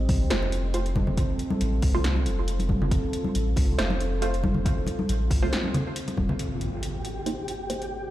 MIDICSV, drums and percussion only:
0, 0, Header, 1, 2, 480
1, 0, Start_track
1, 0, Tempo, 434783
1, 1298, Time_signature, 4, 2, 24, 8
1, 8949, End_track
2, 0, Start_track
2, 0, Title_t, "Drums"
2, 98, Note_on_c, 9, 46, 84
2, 98, Note_on_c, 9, 62, 50
2, 99, Note_on_c, 9, 36, 105
2, 208, Note_off_c, 9, 46, 0
2, 209, Note_off_c, 9, 36, 0
2, 209, Note_off_c, 9, 62, 0
2, 336, Note_on_c, 9, 38, 117
2, 336, Note_on_c, 9, 42, 75
2, 446, Note_off_c, 9, 38, 0
2, 446, Note_off_c, 9, 42, 0
2, 469, Note_on_c, 9, 62, 55
2, 471, Note_on_c, 9, 63, 61
2, 578, Note_on_c, 9, 42, 51
2, 579, Note_off_c, 9, 62, 0
2, 581, Note_off_c, 9, 63, 0
2, 688, Note_off_c, 9, 42, 0
2, 817, Note_on_c, 9, 42, 76
2, 927, Note_off_c, 9, 42, 0
2, 948, Note_on_c, 9, 42, 35
2, 1056, Note_on_c, 9, 62, 57
2, 1057, Note_on_c, 9, 36, 60
2, 1058, Note_off_c, 9, 42, 0
2, 1065, Note_on_c, 9, 63, 86
2, 1166, Note_off_c, 9, 62, 0
2, 1167, Note_off_c, 9, 36, 0
2, 1175, Note_off_c, 9, 63, 0
2, 1182, Note_on_c, 9, 64, 77
2, 1292, Note_off_c, 9, 64, 0
2, 1297, Note_on_c, 9, 36, 114
2, 1297, Note_on_c, 9, 42, 76
2, 1407, Note_off_c, 9, 36, 0
2, 1407, Note_off_c, 9, 42, 0
2, 1537, Note_on_c, 9, 42, 48
2, 1648, Note_off_c, 9, 42, 0
2, 1661, Note_on_c, 9, 63, 95
2, 1771, Note_off_c, 9, 63, 0
2, 1776, Note_on_c, 9, 42, 76
2, 1886, Note_off_c, 9, 42, 0
2, 2012, Note_on_c, 9, 62, 55
2, 2014, Note_on_c, 9, 46, 87
2, 2017, Note_on_c, 9, 36, 101
2, 2122, Note_off_c, 9, 62, 0
2, 2125, Note_off_c, 9, 46, 0
2, 2127, Note_off_c, 9, 36, 0
2, 2256, Note_on_c, 9, 38, 107
2, 2256, Note_on_c, 9, 42, 70
2, 2366, Note_off_c, 9, 38, 0
2, 2366, Note_off_c, 9, 42, 0
2, 2383, Note_on_c, 9, 63, 63
2, 2494, Note_off_c, 9, 63, 0
2, 2495, Note_on_c, 9, 42, 50
2, 2606, Note_off_c, 9, 42, 0
2, 2736, Note_on_c, 9, 42, 75
2, 2846, Note_off_c, 9, 42, 0
2, 2863, Note_on_c, 9, 62, 50
2, 2868, Note_on_c, 9, 42, 34
2, 2969, Note_on_c, 9, 63, 82
2, 2974, Note_off_c, 9, 62, 0
2, 2977, Note_on_c, 9, 36, 58
2, 2979, Note_off_c, 9, 42, 0
2, 3079, Note_off_c, 9, 63, 0
2, 3087, Note_off_c, 9, 36, 0
2, 3109, Note_on_c, 9, 64, 92
2, 3217, Note_on_c, 9, 36, 113
2, 3217, Note_on_c, 9, 42, 77
2, 3220, Note_off_c, 9, 64, 0
2, 3327, Note_off_c, 9, 36, 0
2, 3328, Note_off_c, 9, 42, 0
2, 3458, Note_on_c, 9, 42, 51
2, 3569, Note_off_c, 9, 42, 0
2, 3582, Note_on_c, 9, 63, 79
2, 3692, Note_off_c, 9, 63, 0
2, 3699, Note_on_c, 9, 42, 75
2, 3809, Note_off_c, 9, 42, 0
2, 3934, Note_on_c, 9, 62, 53
2, 3938, Note_on_c, 9, 36, 101
2, 3940, Note_on_c, 9, 46, 95
2, 4044, Note_off_c, 9, 62, 0
2, 4048, Note_off_c, 9, 36, 0
2, 4050, Note_off_c, 9, 46, 0
2, 4180, Note_on_c, 9, 38, 109
2, 4180, Note_on_c, 9, 42, 73
2, 4290, Note_off_c, 9, 38, 0
2, 4290, Note_off_c, 9, 42, 0
2, 4301, Note_on_c, 9, 63, 59
2, 4307, Note_on_c, 9, 62, 63
2, 4411, Note_off_c, 9, 63, 0
2, 4417, Note_off_c, 9, 62, 0
2, 4422, Note_on_c, 9, 42, 50
2, 4532, Note_off_c, 9, 42, 0
2, 4660, Note_on_c, 9, 42, 79
2, 4770, Note_off_c, 9, 42, 0
2, 4791, Note_on_c, 9, 42, 35
2, 4897, Note_on_c, 9, 62, 65
2, 4898, Note_on_c, 9, 36, 56
2, 4902, Note_off_c, 9, 42, 0
2, 4904, Note_on_c, 9, 63, 86
2, 5008, Note_off_c, 9, 62, 0
2, 5009, Note_off_c, 9, 36, 0
2, 5014, Note_off_c, 9, 63, 0
2, 5017, Note_on_c, 9, 64, 80
2, 5127, Note_off_c, 9, 64, 0
2, 5139, Note_on_c, 9, 36, 115
2, 5142, Note_on_c, 9, 42, 83
2, 5250, Note_off_c, 9, 36, 0
2, 5253, Note_off_c, 9, 42, 0
2, 5372, Note_on_c, 9, 62, 63
2, 5382, Note_on_c, 9, 42, 53
2, 5482, Note_off_c, 9, 62, 0
2, 5493, Note_off_c, 9, 42, 0
2, 5508, Note_on_c, 9, 63, 81
2, 5618, Note_off_c, 9, 63, 0
2, 5621, Note_on_c, 9, 42, 82
2, 5732, Note_off_c, 9, 42, 0
2, 5855, Note_on_c, 9, 62, 53
2, 5859, Note_on_c, 9, 36, 104
2, 5861, Note_on_c, 9, 46, 96
2, 5965, Note_off_c, 9, 62, 0
2, 5969, Note_off_c, 9, 36, 0
2, 5972, Note_off_c, 9, 46, 0
2, 6102, Note_on_c, 9, 38, 110
2, 6102, Note_on_c, 9, 42, 77
2, 6212, Note_off_c, 9, 38, 0
2, 6212, Note_off_c, 9, 42, 0
2, 6222, Note_on_c, 9, 63, 66
2, 6332, Note_off_c, 9, 63, 0
2, 6340, Note_on_c, 9, 64, 91
2, 6342, Note_on_c, 9, 42, 55
2, 6450, Note_off_c, 9, 64, 0
2, 6452, Note_off_c, 9, 42, 0
2, 6580, Note_on_c, 9, 42, 80
2, 6691, Note_off_c, 9, 42, 0
2, 6709, Note_on_c, 9, 42, 37
2, 6711, Note_on_c, 9, 62, 58
2, 6815, Note_on_c, 9, 63, 90
2, 6818, Note_on_c, 9, 36, 58
2, 6820, Note_off_c, 9, 42, 0
2, 6822, Note_off_c, 9, 62, 0
2, 6925, Note_off_c, 9, 63, 0
2, 6929, Note_off_c, 9, 36, 0
2, 6946, Note_on_c, 9, 64, 86
2, 7056, Note_off_c, 9, 64, 0
2, 7059, Note_on_c, 9, 42, 74
2, 7169, Note_off_c, 9, 42, 0
2, 7298, Note_on_c, 9, 42, 48
2, 7409, Note_off_c, 9, 42, 0
2, 7538, Note_on_c, 9, 42, 75
2, 7649, Note_off_c, 9, 42, 0
2, 7780, Note_on_c, 9, 42, 46
2, 7890, Note_off_c, 9, 42, 0
2, 8019, Note_on_c, 9, 42, 74
2, 8129, Note_off_c, 9, 42, 0
2, 8259, Note_on_c, 9, 42, 50
2, 8369, Note_off_c, 9, 42, 0
2, 8499, Note_on_c, 9, 42, 74
2, 8610, Note_off_c, 9, 42, 0
2, 8630, Note_on_c, 9, 42, 33
2, 8740, Note_off_c, 9, 42, 0
2, 8949, End_track
0, 0, End_of_file